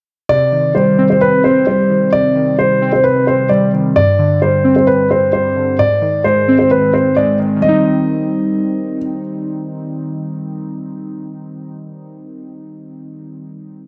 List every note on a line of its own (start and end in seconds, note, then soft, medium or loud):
0.29 1.44 C3 medium
0.29 0.72 D5 loud
0.52 1.67 D#3 medium
0.75 1.66 G3 medium
0.75 1.07 C5 medium
0.98 1.43 C4 medium
1.10 1.20 C5 medium
1.21 1.42 B4 medium
1.44 2.59 C4 medium
1.44 1.65 C5 medium
1.67 2.57 G3 medium
1.67 2.10 C5 medium
1.90 2.35 D#3 medium
2.13 3.27 C3 medium
2.13 2.56 D5 loud
2.36 3.50 D#3 medium
2.58 3.48 G3 medium
2.58 2.91 C5 medium
2.82 3.26 C4 loud
2.93 3.03 C5 medium
3.04 3.25 B4 medium
3.27 3.96 C4 medium
3.27 3.48 C5 medium
3.49 3.96 G3 medium
3.49 3.70 D5 medium
3.73 3.96 D#3 medium
3.96 5.10 G2 medium
3.96 4.39 D5 loud
4.19 5.33 D3 medium
4.42 5.32 G3 medium
4.42 4.74 C5 medium
4.64 5.09 C4 medium
4.76 4.86 C5 medium
4.87 5.08 B4 medium
5.10 5.79 C4 medium
5.10 5.31 C5 medium
5.33 5.79 G3 medium
5.33 5.76 C5 medium
5.56 5.79 D3 medium
5.78 6.93 G#2 medium
5.78 6.22 D5 loud
6.01 7.16 D#3 medium
6.24 7.16 G#3 medium
6.24 6.57 C5 medium
6.48 6.92 C4 medium
6.59 6.69 C5 medium
6.71 6.92 B4 medium
6.93 7.62 C4 medium
6.93 7.14 C5 medium
7.16 7.63 G#3 medium
7.16 7.37 D5 medium
7.39 7.55 D#3 medium
7.56 12.07 D#3 medium
7.60 12.11 G3 medium
7.60 12.15 C4 medium
7.60 8.96 D#5 medium
7.68 12.19 D#4 medium